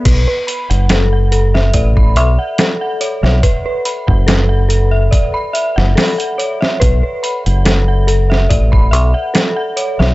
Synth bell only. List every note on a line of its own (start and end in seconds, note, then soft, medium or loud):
0.05 0.26 B4 medium
0.28 0.45 B4 medium
0.47 0.68 B5 medium
0.70 0.89 F#5 medium
0.90 1.10 A4 medium
1.13 1.31 F#5 medium
1.32 1.45 A4 medium
1.54 1.66 E5 medium
1.74 1.94 D5 medium
1.97 2.14 B5 medium
2.17 2.37 E5 loud
2.39 2.58 F#5 medium
2.59 2.72 A4 medium
2.81 3.00 F#5 medium
3.01 3.21 C#5 medium
3.23 3.35 E5 medium
3.43 3.64 B4 medium
3.66 3.83 B4 medium
3.85 4.06 B5 medium
4.07 4.26 F#5 medium
4.27 4.48 A4 medium
4.49 4.68 F#5 medium
4.69 4.82 A4 medium
4.91 5.03 E5 medium
5.11 5.32 D5 medium
5.34 5.52 B5 medium
5.53 5.74 E5 loud
5.76 5.95 F#5 medium
5.95 6.09 A4 medium
6.18 6.38 F#5 medium
6.38 6.59 C#5 medium
6.61 6.72 E5 medium
6.80 7.01 B4 medium
7.03 7.21 B4 medium
7.23 7.44 B5 medium
7.46 7.65 F#5 medium
7.65 7.86 A4 medium
7.88 8.07 F#5 medium
8.07 8.21 A4 medium
8.30 8.41 E5 medium
8.50 8.70 D5 medium
8.72 8.90 B5 medium
8.91 9.12 E5 medium
9.14 9.33 F#5 medium
9.34 9.47 A4 medium
9.56 9.76 F#5 medium
9.77 9.97 C#5 medium
9.99 10.11 E5 medium